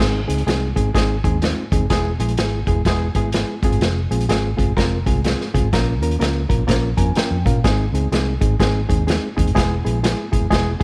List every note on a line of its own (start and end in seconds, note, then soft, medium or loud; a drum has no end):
0.00 0.24 G#1 medium
0.00 0.19 G#3 loud
0.00 0.20 C4 medium
0.00 0.20 D#4 medium
0.00 0.20 G#4 loud
0.00 kick loud
0.00 snare loud
0.00 closed hi-hat medium
0.27 0.44 C#2 medium
0.27 0.41 G#3 medium
0.27 0.41 C4 medium
0.27 0.41 D#4 medium
0.27 0.41 G#4 medium
0.27 closed hi-hat medium
0.38 closed hi-hat soft
0.47 0.71 C2 medium
0.47 0.67 G#3 medium
0.47 0.67 C4 medium
0.47 0.67 D#4 medium
0.47 0.67 G#4 medium
0.47 snare loud
0.47 closed hi-hat medium
0.75 0.92 G#1 medium
0.75 0.89 G#3 medium
0.75 0.89 C4 medium
0.75 0.89 D#4 medium
0.75 0.89 G#4 medium
0.75 kick medium
0.75 closed hi-hat medium
0.94 1.19 G#1 medium
0.94 1.15 G#3 medium
0.94 1.15 C4 medium
0.94 1.15 D#4 medium
0.94 1.15 G#4 loud
0.94 kick medium
0.94 snare medium
0.94 closed hi-hat medium
1.24 1.52 D#2 medium
1.24 1.37 G#3 medium
1.24 1.37 C4 medium
1.24 1.37 D#4 medium
1.24 1.37 G#4 medium
1.24 kick medium
1.24 closed hi-hat medium
1.42 1.63 G#3 medium
1.42 1.63 C4 medium
1.42 1.63 D#4 medium
1.42 1.63 F4 medium
1.42 snare medium
1.42 closed hi-hat medium
1.72 1.80 D#2 medium
1.72 1.85 G#3 medium
1.72 1.85 C4 medium
1.72 1.85 D#4 medium
1.72 1.85 G#4 medium
1.72 kick medium
1.72 closed hi-hat medium
1.81 1.89 F1 medium
1.90 2.15 E1 medium
1.90 2.10 G#3 medium
1.90 2.11 B3 medium
1.90 2.11 E4 medium
1.90 2.11 G#4 loud
1.90 kick loud
1.90 snare loud
1.90 closed hi-hat medium
2.19 2.35 A#1 medium
2.19 2.33 G#3 medium
2.19 2.33 B3 medium
2.19 2.33 E4 medium
2.19 2.33 G#4 medium
2.19 closed hi-hat medium
2.29 closed hi-hat medium
2.37 2.62 G#1 medium
2.37 2.59 G#3 medium
2.37 2.59 B3 medium
2.37 2.59 E4 medium
2.37 2.59 G#4 medium
2.37 snare loud
2.37 closed hi-hat medium
2.67 2.82 E1 medium
2.67 2.80 G#3 medium
2.67 2.81 B3 medium
2.67 2.81 E4 medium
2.67 2.81 G#4 medium
2.67 kick medium
2.67 closed hi-hat medium
2.85 3.10 E1 medium
2.85 3.07 G#3 loud
2.85 3.07 B3 medium
2.85 3.07 E4 medium
2.85 3.07 G#4 loud
2.85 kick medium
2.85 snare loud
2.85 closed hi-hat medium
3.14 3.42 G#1 medium
3.14 3.28 G#3 medium
3.14 3.28 B3 medium
3.14 3.29 E4 medium
3.14 3.29 G#4 medium
3.14 kick medium
3.14 closed hi-hat medium
3.32 3.54 G#3 medium
3.32 3.54 B3 medium
3.32 3.54 E4 medium
3.32 3.54 G#4 medium
3.32 snare medium
3.32 closed hi-hat medium
3.62 3.70 F1 medium
3.62 4.00 G#3 medium
3.62 4.00 C4 medium
3.62 4.00 F4 medium
3.62 4.00 G#4 loud
3.62 kick loud
3.62 closed hi-hat medium
3.72 3.80 G1 medium
3.72 closed hi-hat soft
3.81 4.06 F1 loud
3.81 snare medium
3.81 closed hi-hat medium
4.11 4.26 A#1 medium
4.11 4.24 G#3 medium
4.11 4.24 C4 medium
4.11 4.24 F4 medium
4.11 4.24 G#4 medium
4.11 closed hi-hat medium
4.20 closed hi-hat soft
4.29 4.53 G#1 medium
4.29 4.49 G#3 medium
4.29 4.49 C4 medium
4.29 4.49 F4 medium
4.29 4.50 G#4 medium
4.29 snare loud
4.29 closed hi-hat medium
4.57 4.74 F1 medium
4.57 4.71 G#3 medium
4.57 4.71 C4 medium
4.57 4.71 F4 medium
4.57 4.71 G#4 medium
4.57 kick medium
4.57 closed hi-hat medium
4.76 5.01 F1 medium
4.76 4.97 G#3 medium
4.76 4.97 C4 medium
4.76 4.97 F4 medium
4.76 4.97 A#4 loud
4.76 kick medium
4.76 snare medium
4.76 closed hi-hat medium
5.06 5.34 C2 medium
5.06 5.19 G#3 medium
5.06 5.19 C4 medium
5.06 5.19 F4 medium
5.06 5.19 G#4 medium
5.06 kick medium
5.06 closed hi-hat medium
5.24 5.45 G#3 medium
5.24 5.45 C4 medium
5.24 5.45 F4 medium
5.24 5.45 G#4 medium
5.24 snare medium
5.24 closed hi-hat medium
5.41 snare soft
5.54 5.62 C2 medium
5.54 5.67 G#3 medium
5.54 5.67 C4 medium
5.54 5.67 F4 medium
5.54 5.67 G#4 medium
5.54 kick medium
5.54 closed hi-hat medium
5.63 5.71 G#1 medium
5.72 6.01 A#1 medium
5.72 5.93 A#3 medium
5.72 5.93 C#4 medium
5.72 5.93 F4 medium
5.72 5.93 A#4 loud
5.72 kick loud
5.72 snare loud
5.72 closed hi-hat medium
6.01 6.17 D#2 medium
6.01 6.15 A#3 medium
6.01 6.15 C#4 medium
6.01 6.15 F4 medium
6.01 6.15 A#4 medium
6.01 closed hi-hat medium
6.11 closed hi-hat soft
6.19 6.45 C#2 medium
6.19 6.40 A#3 medium
6.19 6.40 C#4 medium
6.19 6.41 F4 medium
6.19 6.41 A#4 medium
6.19 snare loud
6.19 closed hi-hat medium
6.49 6.65 A#1 medium
6.49 6.62 A#3 medium
6.49 6.62 C#4 medium
6.49 6.62 F4 medium
6.49 6.63 A#4 medium
6.49 kick medium
6.49 closed hi-hat medium
6.67 6.92 A#1 medium
6.67 6.88 A#3 loud
6.67 6.88 C#4 medium
6.67 6.88 F4 medium
6.67 6.89 A#4 loud
6.67 kick medium
6.67 snare medium
6.67 closed hi-hat medium
6.97 7.13 F2 medium
6.97 7.10 A#3 medium
6.97 7.10 C#4 medium
6.97 7.11 F4 medium
6.97 7.10 A#4 medium
6.97 7.15 G#5 medium
6.97 kick medium
6.97 closed hi-hat medium
7.15 7.36 A#3 medium
7.15 7.37 C#4 medium
7.15 7.37 F4 medium
7.15 7.37 A#4 medium
7.15 7.43 G5 medium
7.15 muted fingered electric bass stroke soft
7.15 snare medium
7.15 closed hi-hat medium
7.31 7.43 F2 medium
7.46 7.61 A#2 medium
7.46 7.59 A#3 medium
7.46 7.59 C#4 medium
7.46 7.59 F4 medium
7.46 7.59 A#4 medium
7.46 7.63 F5 medium
7.46 kick medium
7.46 closed hi-hat medium
7.64 7.89 G#1 medium
7.64 7.85 G#3 loud
7.64 7.85 C4 medium
7.64 7.85 D#4 medium
7.64 7.85 G#4 loud
7.64 kick loud
7.64 snare loud
7.64 closed hi-hat medium
7.92 8.08 C#2 medium
7.92 8.07 G#3 medium
7.92 8.07 C4 medium
7.92 8.07 D#4 medium
7.92 8.07 G#4 medium
7.92 closed hi-hat medium
8.11 8.36 C2 medium
8.11 8.32 G#3 medium
8.11 8.32 C4 medium
8.11 8.32 D#4 medium
8.11 8.33 G#4 medium
8.11 snare loud
8.11 closed hi-hat medium
8.41 8.57 G#1 medium
8.41 8.54 G#3 medium
8.41 8.54 C4 medium
8.41 8.54 D#4 medium
8.41 8.54 G#4 medium
8.41 kick medium
8.41 closed hi-hat medium
8.60 8.84 G#1 medium
8.60 8.80 G#3 medium
8.60 8.80 C4 medium
8.60 8.80 D#4 medium
8.60 8.80 G#4 loud
8.60 kick medium
8.60 snare loud
8.60 closed hi-hat medium
8.88 9.17 D#2 medium
8.88 9.02 G#3 medium
8.88 9.02 C4 medium
8.88 9.02 D#4 medium
8.88 9.02 G#4 medium
8.88 kick medium
8.88 closed hi-hat medium
9.07 9.28 G#3 medium
9.07 9.28 C4 medium
9.07 9.28 D#4 medium
9.07 9.28 G#4 medium
9.07 snare medium
9.07 closed hi-hat medium
9.36 9.45 D#2 medium
9.36 9.50 G#3 medium
9.36 9.50 C4 medium
9.36 9.50 D#4 medium
9.36 9.50 G#4 medium
9.36 kick medium
9.36 closed hi-hat medium
9.47 9.54 F1 medium
9.47 closed hi-hat soft
9.55 9.80 E1 loud
9.55 9.76 G#3 loud
9.55 9.76 B3 medium
9.55 9.76 E4 medium
9.55 9.76 G#4 loud
9.55 kick loud
9.55 snare loud
9.55 closed hi-hat medium
9.84 10.13 A#1 medium
9.84 9.98 G#3 medium
9.84 9.98 B3 medium
9.84 9.98 E4 medium
9.84 9.98 G#4 medium
9.84 closed hi-hat medium
10.03 10.24 G#3 medium
10.03 10.24 B3 medium
10.03 10.24 E4 medium
10.03 10.24 G#4 medium
10.03 snare loud
10.03 closed hi-hat medium
10.32 10.41 G#1 medium
10.32 10.45 G#3 medium
10.32 10.45 B3 medium
10.32 10.45 E4 medium
10.32 10.45 G#4 medium
10.32 kick medium
10.32 closed hi-hat medium
10.41 10.49 E1 medium
10.50 10.75 E1 medium
10.50 10.71 G#3 loud
10.50 10.71 B3 medium
10.50 10.71 E4 medium
10.50 10.71 G#4 loud
10.50 kick medium
10.50 snare loud
10.50 closed hi-hat medium
10.80 10.83 G#3 medium
10.80 10.83 B3 medium
10.80 10.83 E4 medium
10.80 10.83 G#4 medium